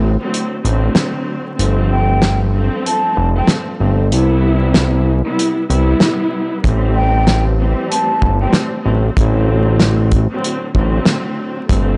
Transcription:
Already playing: A1 A2 D3 F#3 C4
0.21 A2 D3 F#3 C4
0.34 closed hi-hat
0.63 A1 A2 D3 F#3 C4, closed hi-hat
0.95 snare, closed hi-hat
1.57 G1 G2 F3 A3 C4, closed hi-hat
1.92 G5
2.22 snare, closed hi-hat
2.55 G2 F3 A3 C4
2.86 A5, closed hi-hat
3.17 F1
3.35 G2 F3 A3 C4 G5
3.47 snare, closed hi-hat
3.80 G1 G2 F3 A3 C4
4.12 C2 C3 G3 B3 E4, closed hi-hat
4.74 snare, closed hi-hat
5.26 C3 G3 B3 E4
5.39 closed hi-hat
5.70 C2 C3 G3 B3 E4, closed hi-hat
6.00 snare, closed hi-hat
6.64 A1 A2 E3 G3 C4, kick, closed hi-hat
6.96 G5
7.27 snare, closed hi-hat
7.59 A2 E3 G3 C4
7.90 A5, closed hi-hat
8.22 G1, kick
8.40 A2 E3 G3 C4 G5
8.53 snare, closed hi-hat
8.84 A1 A2 D3 F#3 C4
9.17 A1 A2 D3 F#3 C4, kick, closed hi-hat
9.80 snare, closed hi-hat
10.12 kick, closed hi-hat
10.32 A2 D3 F#3 C4
10.44 closed hi-hat
10.74 A1 A2 D3 F#3 C4, kick
11.05 snare, closed hi-hat
11.68 G1 G2 F3 A3 C4, kick, closed hi-hat

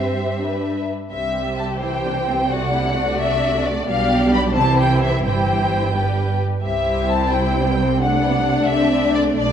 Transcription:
Already playing: G2 C4 G4 C5 E5
0.40 D4 B4
1.11 C2 C3 G3 C4 G4 E5
1.59 A5
1.81 E3 E4 C5 G5
2.05 D4
2.28 C4
2.51 A3 D4 F#4 D5 F#5
2.75 E4
2.97 F#4
3.20 E5
3.66 D5
3.89 B1 B2 G3 D4 G4 D5 F5
4.34 B5
4.56 C2 C3 E3 E4 G4 C5 A5
4.80 G5
5.04 E5
5.25 G1 G2 E3 E4 G4 C5 G5
5.95 G3 D4 G4 B4
6.63 C2 C3 G3 E4 G4 C5 E5
7.10 A5
7.34 E4 G5
7.58 B3
7.80 C4
8.02 A3 D4 D5 F#5
8.24 B3
8.47 A3
8.69 C4 E5
9.15 D5
9.37 B1 B2 D4 D5

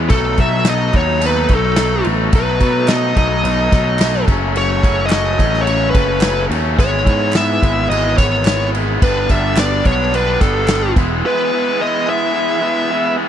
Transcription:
0.08 B1 B2 F#3 A3 D#4 A4 B4, kick, crash
0.37 B1 B2 F#3 A3 D#4 E5, kick, crash
0.65 B2 F#3 A3 D#4, snare, clap, crash
0.69 D#5
0.92 D#2 B2 F#3 A3 D#4, kick, crash
0.96 C#5
1.20 B2 F#3 A3 D#4, crash
1.26 B4
1.49 B1 B2 F#3 A3 D#4, kick, crash
1.55 A4
1.76 B2 F#3 A3 D#4, snare, clap, crash
2.04 A1 B2 F#3 A3 D#4, crash
2.32 B2 F#3 A3 D#4 B4, kick, crash
2.60 B2 F#3 A3 D#4, kick, crash
2.87 B2 F#3 A3 D#4 D#5, snare, clap, crash
3.16 B1 B2 F#3 A3 D#4 D#5, kick, crash
3.44 B1 B2 F#3 A3 D#4, crash
3.71 B1 B2 F#3 A3 D#4, kick, snare, crash
3.99 B2 F#3 A3 D#4, snare, clap, crash
4.25 F#1 F#2 C#3 F#3 A3 C#4 F#4 G#4 C#5, kick, crash
4.55 F#2 C#3 F#3 A3 C#4 C#5, crash
4.81 F#1 F#2 C#3 F#3 A3 C#4, kick, crash
5.06 D#5
5.10 F#2 C#3 F#3 A3 C#4, snare, clap, crash
5.38 A1 F#2 C#3 F#3 A3 C#4, kick, crash
5.54 snare
5.61 C#5
5.66 F#2 C#3 F#3 A3 C#4, crash
5.90 F#2 B4
5.95 F#1 C#3 F#3 A3 C#4, kick, crash
6.21 F#2 C#3 F#3 A3 C#4, snare, clap, crash
6.50 D#2 F#2 C#3 F#3 A3 C#4, crash
6.75 G#1 G#2 E3 G#3 B3 E4, kick
6.80 C#5, crash
7.04 G#2 E3 G#3 B3 E4, kick, crash
7.33 G#2 E3 G#3 B3 E4, snare, clap, crash
7.37 E5
7.62 G#1 G#2 E3 G#3 B3 E4, kick, crash
7.90 G#1 G#2 E3 G#3 B3 E4 D#5, crash
8.17 G#1 G#2 E3 G#3 B3 E4 C#5, kick, snare, crash
8.45 G#2 E3 G#3 B3 E4, snare, clap, crash
8.74 G#2 E3 G#3 B3 E4, crash
9.00 G1 G2 D3 G3 B3 D4 F#4 G4 B4 D5, kick, crash
9.29 G1 G2 D3 G3 B3 D4 E5, kick, crash
9.56 G2 D3 G3 B3 D4 D5, snare, clap, crash
9.85 B1 G2 D3 G3 B3 D4 C#5, kick, crash
10.13 G2 D3 G3 B3 D4 B4, crash
10.41 G1 G2 D3 G3 B3 D4 A4, kick, snare, crash
10.68 G2 D3 G3 B3 D4, snare, clap, crash
10.93 E1 E3 B3 E4 G#4 E5, kick, crash
10.97 G#3 B3 E4
11.24 E3 G#3 B3 E4 B4
11.52 E3 G#3 B3 E4
11.79 E3 G#3 B3 E4 D#5
12.06 E3 G#3 B3 E4 E5
12.33 E3 G#3 B3 E4
12.61 E3 G#3 B3 E4
12.90 E3 G#3 B3 E4
13.16 E3 G#3 B3 E4

